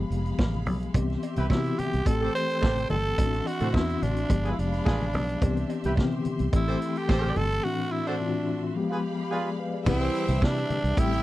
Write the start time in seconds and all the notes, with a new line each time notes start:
Already playing: F3 G#3 B3 G4 F5 B5
0.10 F1, closed hi-hat
0.26 closed hi-hat
0.39 A1, kick, snare, muted conga, high conga
0.54 high conga
0.66 B1, open hi-hat, high conga, low conga
0.83 closed hi-hat
0.94 C2 E3 B3 C4 G4 E5 C6, kick, closed hi-hat, cowbell, muted conga, low conga
1.10 snare, muted conga
1.23 closed hi-hat, cowbell
1.36 C2 E4 G4 B4, closed hi-hat, high conga
1.50 C3 E3 B3 C4 E4 F#4, kick, snare, cowbell, muted conga
1.58 G4
1.65 closed hi-hat, muted conga
1.79 G4, closed hi-hat, high conga
1.93 C2, closed hi-hat
2.05 A1 E3 A3 C4 F#4 A4 G5 C6, kick, closed hi-hat, cowbell, muted conga
2.13 G4
2.21 G4 A4 C5, muted conga
2.35 C5, closed hi-hat
2.50 closed hi-hat
2.62 A1 G4 A4 C5, kick, snare, cowbell, muted conga, high conga
2.77 closed hi-hat, high conga
2.89 G1 A4, open hi-hat, cowbell, high conga, low conga
3.06 closed hi-hat
3.18 A1 E3 C4 D4 F#4 E5 C6, kick, closed hi-hat, cowbell, muted conga, low conga
3.33 snare, closed hi-hat, muted conga
3.46 F#4, closed hi-hat, cowbell
3.60 A2 F#4 A4 C5, closed hi-hat, high conga
3.73 E2 E3 C4 D4 E4 F#4, kick, snare, cowbell
3.89 closed hi-hat, muted conga
4.02 A1 D4, closed hi-hat, high conga
4.16 closed hi-hat
4.30 G1 F3 G#3 B3 G4 F5 B5, kick, closed hi-hat, cowbell, muted conga
4.45 F4 G#4 B4, closed hi-hat
4.51 E4
4.59 F1 D4, closed hi-hat
4.73 closed hi-hat
4.86 A1 F4 G#4 B4, kick, snare, cowbell, muted conga, high conga
5.01 closed hi-hat, high conga
5.13 B1, open hi-hat, cowbell, high conga, low conga
5.29 closed hi-hat
5.41 C2 E3 B3 C4 G4 E5 C6, kick, closed hi-hat, cowbell, muted conga, low conga
5.57 closed hi-hat, muted conga
5.70 closed hi-hat, cowbell
5.84 C2 E4 G4 B4, closed hi-hat, high conga
5.96 C3 D3 B3 C4 G4, kick, snare, cowbell, muted conga
6.04 E3
6.13 muted conga
6.25 closed hi-hat, high conga
6.39 C2, closed hi-hat
6.53 A1 E3 A3 C4 E4 G4 A4 G5, kick, closed hi-hat, cowbell
6.68 G4 A4 C5, muted conga
6.82 closed hi-hat
6.96 G4, closed hi-hat
7.08 A1 G4 A4 C5, kick, snare, cowbell, muted conga, high conga
7.24 muted conga, high conga
7.36 G1 A4, open hi-hat, cowbell, high conga, low conga
7.52 closed hi-hat
7.64 A2 E3 A3 C4 D4 F#4 E5
7.92 E4
8.07 D4 F#4 A4 C5
8.20 A2 E3 C4 D4 F4
8.29 F#4
8.75 F3 G#3 B3 G4 F5 B5
8.90 F4 G#4 B4
9.31 F4 G#4 B4 D5
9.59 B4 F5
9.74 G#4 D5
9.85 C2 E3 G3 C4 E4 G4 B4 E5 G5, kick, crash, low conga
10.02 snare, muted conga
10.15 closed hi-hat
10.28 C2, closed hi-hat, high conga
10.42 C3 D4, kick, snare, muted conga
10.57 closed hi-hat
10.70 closed hi-hat, high conga
10.84 C2, closed hi-hat
10.96 A1 E3 G3 A3 C4 E4 G4 A4 G5 C6, kick, closed hi-hat, muted conga
11.12 closed hi-hat, muted conga